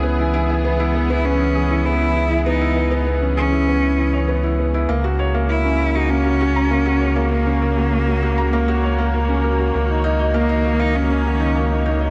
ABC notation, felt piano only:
X:1
M:4/4
L:1/16
Q:1/4=99
K:C#dor
V:1 name="Felt piano"
B, E E e B, E B B, B, C G E B, E E e | B, E B B, B, C G E B, E E c B, E B, E | A, F c A, A, C A F A, F F a A, F c A, | A, C A F A, F F a A, F c A, A, C A F |
A, D D d A, D A A, A, C F D A, D D d |]